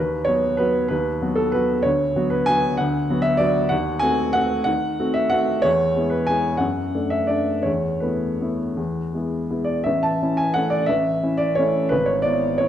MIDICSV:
0, 0, Header, 1, 2, 480
1, 0, Start_track
1, 0, Key_signature, 3, "major"
1, 0, Tempo, 312826
1, 1390, Time_signature, 3, 2, 24, 8
1, 6178, Tempo, 324149
1, 10018, Tempo, 345423
1, 10978, Tempo, 363196
1, 14818, Tempo, 339367
1, 18309, End_track
2, 0, Start_track
2, 0, Title_t, "Upright piano"
2, 0, Program_c, 0, 0
2, 0, Note_on_c, 0, 39, 52
2, 0, Note_on_c, 0, 71, 74
2, 200, Control_c, 0, 64, 127
2, 377, Note_on_c, 0, 73, 89
2, 398, Note_off_c, 0, 71, 0
2, 400, Note_off_c, 0, 39, 0
2, 410, Note_on_c, 0, 54, 41
2, 423, Note_on_c, 0, 59, 42
2, 423, Note_on_c, 0, 66, 48
2, 859, Note_off_c, 0, 54, 0
2, 866, Note_off_c, 0, 59, 0
2, 866, Note_off_c, 0, 66, 0
2, 878, Note_on_c, 0, 71, 81
2, 892, Note_off_c, 0, 73, 0
2, 912, Note_on_c, 0, 59, 44
2, 914, Note_on_c, 0, 54, 41
2, 920, Note_on_c, 0, 66, 48
2, 1333, Note_off_c, 0, 71, 0
2, 1341, Note_off_c, 0, 59, 0
2, 1342, Note_off_c, 0, 54, 0
2, 1345, Note_off_c, 0, 66, 0
2, 1356, Note_on_c, 0, 71, 83
2, 1388, Note_on_c, 0, 39, 59
2, 1414, Control_c, 0, 64, 0
2, 1632, Control_c, 0, 64, 127
2, 1850, Note_off_c, 0, 39, 0
2, 1871, Note_on_c, 0, 54, 47
2, 1872, Note_on_c, 0, 59, 46
2, 1876, Note_on_c, 0, 66, 49
2, 2079, Note_on_c, 0, 69, 81
2, 2099, Note_off_c, 0, 71, 0
2, 2322, Note_off_c, 0, 54, 0
2, 2322, Note_off_c, 0, 59, 0
2, 2325, Note_off_c, 0, 66, 0
2, 2331, Note_on_c, 0, 71, 84
2, 2351, Note_off_c, 0, 69, 0
2, 2369, Note_on_c, 0, 54, 43
2, 2378, Note_on_c, 0, 59, 43
2, 2379, Note_on_c, 0, 66, 52
2, 2801, Note_on_c, 0, 73, 86
2, 2802, Note_off_c, 0, 54, 0
2, 2807, Note_off_c, 0, 59, 0
2, 2807, Note_off_c, 0, 66, 0
2, 2831, Note_off_c, 0, 71, 0
2, 2835, Note_on_c, 0, 38, 56
2, 2874, Control_c, 0, 64, 0
2, 3079, Control_c, 0, 64, 127
2, 3301, Note_off_c, 0, 38, 0
2, 3316, Note_on_c, 0, 59, 47
2, 3317, Note_on_c, 0, 54, 45
2, 3318, Note_on_c, 0, 66, 55
2, 3531, Note_on_c, 0, 71, 76
2, 3539, Note_off_c, 0, 73, 0
2, 3754, Note_off_c, 0, 59, 0
2, 3755, Note_off_c, 0, 54, 0
2, 3755, Note_off_c, 0, 66, 0
2, 3775, Note_on_c, 0, 80, 111
2, 3790, Note_off_c, 0, 71, 0
2, 3812, Note_on_c, 0, 59, 51
2, 3812, Note_on_c, 0, 66, 53
2, 3814, Note_on_c, 0, 54, 46
2, 4230, Note_off_c, 0, 59, 0
2, 4230, Note_off_c, 0, 66, 0
2, 4231, Note_off_c, 0, 54, 0
2, 4256, Note_on_c, 0, 78, 81
2, 4258, Note_off_c, 0, 80, 0
2, 4295, Control_c, 0, 64, 0
2, 4298, Note_on_c, 0, 38, 62
2, 4523, Control_c, 0, 64, 127
2, 4738, Note_off_c, 0, 38, 0
2, 4759, Note_on_c, 0, 54, 48
2, 4762, Note_on_c, 0, 59, 50
2, 4768, Note_on_c, 0, 66, 54
2, 4938, Note_on_c, 0, 76, 93
2, 4971, Note_off_c, 0, 78, 0
2, 5177, Note_on_c, 0, 74, 91
2, 5184, Note_off_c, 0, 54, 0
2, 5185, Note_off_c, 0, 59, 0
2, 5189, Note_off_c, 0, 66, 0
2, 5201, Note_off_c, 0, 76, 0
2, 5210, Note_on_c, 0, 54, 48
2, 5219, Note_on_c, 0, 59, 49
2, 5224, Note_on_c, 0, 66, 52
2, 5645, Note_off_c, 0, 54, 0
2, 5650, Note_off_c, 0, 59, 0
2, 5653, Note_off_c, 0, 66, 0
2, 5661, Note_on_c, 0, 78, 91
2, 5677, Note_off_c, 0, 74, 0
2, 5696, Note_on_c, 0, 39, 59
2, 5725, Control_c, 0, 64, 0
2, 5920, Control_c, 0, 64, 127
2, 6129, Note_on_c, 0, 80, 100
2, 6160, Note_off_c, 0, 78, 0
2, 6164, Note_off_c, 0, 39, 0
2, 6167, Note_on_c, 0, 60, 52
2, 6176, Note_on_c, 0, 57, 45
2, 6180, Note_on_c, 0, 66, 53
2, 6615, Note_off_c, 0, 60, 0
2, 6620, Note_off_c, 0, 57, 0
2, 6622, Note_off_c, 0, 66, 0
2, 6625, Note_on_c, 0, 78, 100
2, 6647, Note_off_c, 0, 80, 0
2, 6659, Note_on_c, 0, 60, 46
2, 6661, Note_on_c, 0, 57, 49
2, 6663, Note_on_c, 0, 66, 49
2, 7065, Note_off_c, 0, 78, 0
2, 7088, Note_on_c, 0, 78, 92
2, 7097, Note_off_c, 0, 60, 0
2, 7098, Note_off_c, 0, 57, 0
2, 7099, Note_off_c, 0, 66, 0
2, 7124, Note_on_c, 0, 51, 60
2, 7176, Control_c, 0, 64, 0
2, 7407, Control_c, 0, 64, 127
2, 7592, Note_off_c, 0, 51, 0
2, 7613, Note_on_c, 0, 60, 47
2, 7617, Note_on_c, 0, 66, 49
2, 7620, Note_on_c, 0, 57, 47
2, 7824, Note_on_c, 0, 76, 86
2, 7829, Note_off_c, 0, 78, 0
2, 8054, Note_off_c, 0, 60, 0
2, 8056, Note_off_c, 0, 66, 0
2, 8057, Note_off_c, 0, 57, 0
2, 8057, Note_on_c, 0, 78, 94
2, 8087, Note_off_c, 0, 76, 0
2, 8093, Note_on_c, 0, 60, 46
2, 8095, Note_on_c, 0, 57, 50
2, 8099, Note_on_c, 0, 66, 50
2, 8529, Note_off_c, 0, 60, 0
2, 8530, Note_off_c, 0, 57, 0
2, 8532, Note_off_c, 0, 66, 0
2, 8536, Note_on_c, 0, 73, 99
2, 8560, Note_off_c, 0, 78, 0
2, 8576, Note_on_c, 0, 40, 58
2, 8613, Control_c, 0, 64, 0
2, 8858, Control_c, 0, 64, 127
2, 9034, Note_off_c, 0, 40, 0
2, 9046, Note_on_c, 0, 56, 45
2, 9046, Note_on_c, 0, 59, 46
2, 9051, Note_on_c, 0, 64, 48
2, 9246, Note_on_c, 0, 71, 66
2, 9270, Note_off_c, 0, 73, 0
2, 9488, Note_off_c, 0, 56, 0
2, 9488, Note_off_c, 0, 59, 0
2, 9492, Note_off_c, 0, 64, 0
2, 9494, Note_on_c, 0, 80, 90
2, 9517, Note_off_c, 0, 71, 0
2, 9527, Note_on_c, 0, 56, 39
2, 9530, Note_on_c, 0, 59, 41
2, 9534, Note_on_c, 0, 64, 46
2, 9950, Note_on_c, 0, 78, 75
2, 9963, Note_off_c, 0, 56, 0
2, 9964, Note_off_c, 0, 59, 0
2, 9966, Note_off_c, 0, 64, 0
2, 9984, Note_on_c, 0, 42, 48
2, 9995, Note_off_c, 0, 80, 0
2, 10039, Control_c, 0, 64, 0
2, 10225, Control_c, 0, 64, 127
2, 10452, Note_off_c, 0, 42, 0
2, 10472, Note_on_c, 0, 62, 42
2, 10476, Note_on_c, 0, 57, 41
2, 10689, Note_on_c, 0, 76, 77
2, 10696, Note_off_c, 0, 78, 0
2, 10923, Note_on_c, 0, 74, 72
2, 10924, Note_off_c, 0, 62, 0
2, 10926, Note_off_c, 0, 57, 0
2, 10951, Note_on_c, 0, 57, 38
2, 10951, Note_on_c, 0, 62, 41
2, 10960, Note_off_c, 0, 76, 0
2, 11394, Note_off_c, 0, 57, 0
2, 11394, Note_off_c, 0, 62, 0
2, 11396, Note_on_c, 0, 73, 69
2, 11428, Note_on_c, 0, 40, 44
2, 11430, Note_off_c, 0, 74, 0
2, 11482, Control_c, 0, 64, 0
2, 11670, Control_c, 0, 64, 127
2, 11892, Note_on_c, 0, 71, 54
2, 11903, Note_off_c, 0, 73, 0
2, 11905, Note_off_c, 0, 40, 0
2, 11916, Note_on_c, 0, 57, 36
2, 11929, Note_on_c, 0, 59, 35
2, 11934, Note_on_c, 0, 64, 37
2, 12377, Note_off_c, 0, 57, 0
2, 12384, Note_off_c, 0, 59, 0
2, 12386, Note_off_c, 0, 64, 0
2, 12430, Note_on_c, 0, 57, 36
2, 12430, Note_on_c, 0, 59, 33
2, 12436, Note_on_c, 0, 64, 39
2, 12869, Note_off_c, 0, 57, 0
2, 12869, Note_off_c, 0, 59, 0
2, 12872, Note_off_c, 0, 64, 0
2, 12901, Note_on_c, 0, 40, 40
2, 12947, Control_c, 0, 64, 0
2, 13187, Control_c, 0, 64, 127
2, 13369, Note_off_c, 0, 40, 0
2, 13386, Note_on_c, 0, 56, 35
2, 13398, Note_on_c, 0, 59, 35
2, 13403, Note_on_c, 0, 64, 36
2, 13817, Note_off_c, 0, 56, 0
2, 13824, Note_off_c, 0, 59, 0
2, 13827, Note_off_c, 0, 64, 0
2, 13874, Note_on_c, 0, 56, 35
2, 13877, Note_on_c, 0, 59, 33
2, 13877, Note_on_c, 0, 64, 37
2, 14063, Note_on_c, 0, 74, 67
2, 14089, Note_off_c, 0, 71, 0
2, 14303, Note_off_c, 0, 56, 0
2, 14304, Note_off_c, 0, 59, 0
2, 14305, Note_off_c, 0, 64, 0
2, 14317, Note_on_c, 0, 76, 76
2, 14324, Note_off_c, 0, 74, 0
2, 14354, Note_on_c, 0, 33, 53
2, 14376, Control_c, 0, 64, 0
2, 14568, Note_off_c, 0, 76, 0
2, 14569, Note_on_c, 0, 81, 76
2, 14588, Control_c, 0, 64, 127
2, 14808, Note_off_c, 0, 33, 0
2, 14826, Note_on_c, 0, 64, 45
2, 14827, Note_on_c, 0, 61, 44
2, 15038, Note_on_c, 0, 80, 79
2, 15057, Note_off_c, 0, 81, 0
2, 15262, Note_off_c, 0, 61, 0
2, 15262, Note_off_c, 0, 64, 0
2, 15272, Note_on_c, 0, 78, 92
2, 15293, Note_off_c, 0, 80, 0
2, 15300, Note_on_c, 0, 57, 44
2, 15300, Note_on_c, 0, 61, 41
2, 15310, Note_on_c, 0, 64, 43
2, 15504, Note_on_c, 0, 74, 81
2, 15528, Note_off_c, 0, 78, 0
2, 15729, Note_off_c, 0, 57, 0
2, 15729, Note_off_c, 0, 61, 0
2, 15733, Note_on_c, 0, 76, 81
2, 15734, Note_off_c, 0, 64, 0
2, 15759, Note_off_c, 0, 74, 0
2, 15776, Note_on_c, 0, 33, 54
2, 15804, Control_c, 0, 64, 0
2, 16026, Control_c, 0, 64, 127
2, 16238, Note_off_c, 0, 33, 0
2, 16255, Note_on_c, 0, 61, 44
2, 16257, Note_on_c, 0, 64, 47
2, 16458, Note_on_c, 0, 74, 81
2, 16474, Note_off_c, 0, 76, 0
2, 16694, Note_off_c, 0, 61, 0
2, 16695, Note_off_c, 0, 64, 0
2, 16710, Note_on_c, 0, 73, 81
2, 16722, Note_off_c, 0, 74, 0
2, 16754, Note_on_c, 0, 61, 43
2, 16756, Note_on_c, 0, 57, 40
2, 16765, Note_on_c, 0, 64, 49
2, 17178, Note_off_c, 0, 61, 0
2, 17179, Note_off_c, 0, 57, 0
2, 17185, Note_off_c, 0, 64, 0
2, 17187, Note_on_c, 0, 71, 87
2, 17203, Note_off_c, 0, 73, 0
2, 17230, Note_on_c, 0, 32, 58
2, 17245, Control_c, 0, 64, 0
2, 17424, Note_on_c, 0, 73, 71
2, 17439, Note_off_c, 0, 71, 0
2, 17501, Control_c, 0, 64, 127
2, 17654, Note_on_c, 0, 74, 84
2, 17680, Note_off_c, 0, 73, 0
2, 17686, Note_off_c, 0, 32, 0
2, 17700, Note_on_c, 0, 59, 43
2, 17704, Note_on_c, 0, 64, 47
2, 18135, Note_off_c, 0, 59, 0
2, 18137, Note_off_c, 0, 64, 0
2, 18160, Note_off_c, 0, 74, 0
2, 18161, Note_on_c, 0, 73, 83
2, 18185, Note_on_c, 0, 59, 43
2, 18197, Note_on_c, 0, 64, 44
2, 18309, Note_off_c, 0, 59, 0
2, 18309, Note_off_c, 0, 64, 0
2, 18309, Note_off_c, 0, 73, 0
2, 18309, End_track
0, 0, End_of_file